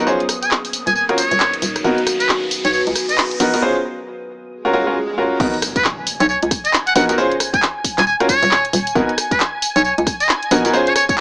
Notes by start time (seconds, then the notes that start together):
Already playing: A#1 G#5 D#6, riser
0.07 C#4 F4 G#4 C5, tambourine
0.20 closed hi-hat
0.29 cross-stick, open hi-hat, tambourine
0.43 G#5, closed hi-hat, tambourine
0.51 clap, tambourine
0.65 open hi-hat
0.73 open hi-hat, tambourine
0.87 D#1 G#5, closed hi-hat, tambourine
0.96 D#4 G#5, tambourine
1.05 C#4 F4 F#4 A#4 C#5, cross-stick, closed hi-hat
1.18 C#5, open hi-hat, tambourine
1.31 D#1, closed hi-hat, tambourine
1.40 clap, tambourine
1.54 closed hi-hat
1.62 D#1, open hi-hat, tambourine
1.76 cross-stick, closed hi-hat, tambourine
1.84 G#1 B3 D#4 F#4 A#4, tambourine
1.98 closed hi-hat
2.07 cross-stick, open hi-hat, tambourine
2.14 B4
2.20 B4, closed hi-hat, tambourine
2.29 G#5, clap, tambourine
2.51 open hi-hat, tambourine
2.65 B1 C#5, closed hi-hat, tambourine
2.73 C#5, tambourine
2.87 C#2, closed hi-hat
2.96 cross-stick, open hi-hat, tambourine
3.09 D#5, closed hi-hat, tambourine
3.18 clap, tambourine
3.31 closed hi-hat
3.40 A#1 B3 D#4 F#4 A#4, open hi-hat, tambourine
3.54 B3 D#4 F#4 A#4, closed hi-hat, tambourine
3.62 C#4 F4 G#4 C5
4.51 swell
4.65 C#4 F4 F#4 A#4
4.73 C#4 F4 F#4 A#4
4.87 C#4 F4 F#4 A#4
5.18 C#4 F4 F#4 A#4
5.40 G#1 B3 D#4 F#4 A#4 G#5, kick, crash, tambourine, impact
5.54 closed hi-hat
5.62 cross-stick, open hi-hat, tambourine
5.76 B4, kick, closed hi-hat, tambourine
5.85 clap, tambourine
6.07 open hi-hat, tambourine
6.20 B1 C#5, closed hi-hat, tambourine
6.29 C#5, tambourine
6.43 C#2, closed hi-hat
6.51 kick, cross-stick, open hi-hat, tambourine
6.65 D#5, closed hi-hat, tambourine
6.73 clap, tambourine
6.87 F#5, closed hi-hat
6.96 A#1 B3 D#4 F#4 A#4 F#5, open hi-hat, tambourine
7.09 B3 D#4 F#4 A#4, closed hi-hat, tambourine
7.18 C#4 F4 G#4 C5, tambourine
7.32 closed hi-hat
7.40 cross-stick, open hi-hat, tambourine
7.54 G#5, kick, closed hi-hat, tambourine
7.62 clap, tambourine
7.84 kick, open hi-hat, tambourine
7.98 D#1 G#5, clap, closed hi-hat, tambourine
8.07 G#5, tambourine
8.20 C#4 F4 F#4 A#4, cross-stick, closed hi-hat
8.29 C#5, kick, open hi-hat, tambourine
8.43 D#1, closed hi-hat, tambourine
8.51 clap, tambourine
8.65 closed hi-hat
8.73 D#1, open hi-hat, tambourine
8.87 closed hi-hat, tambourine
8.95 G#1 B3 D#4 F#4 A#4, kick, tambourine
9.09 closed hi-hat
9.18 cross-stick, open hi-hat, tambourine
9.31 B4, kick, closed hi-hat, tambourine
9.40 clap, tambourine
9.62 open hi-hat, tambourine
9.76 B1 C#5, closed hi-hat, tambourine
9.85 C#5, tambourine
9.98 C#2, closed hi-hat
10.07 kick, cross-stick, open hi-hat, tambourine
10.20 D#5, closed hi-hat, tambourine
10.29 clap, tambourine
10.43 closed hi-hat
10.51 A#1 B3 D#4 F#4 A#4, open hi-hat, tambourine
10.65 B3 D#4 F#4 A#4, closed hi-hat, tambourine
10.73 C#4 F4 G#4 C5, tambourine
10.87 C#5, closed hi-hat
10.96 C#5, cross-stick, open hi-hat, tambourine
11.09 C#5, kick, closed hi-hat, tambourine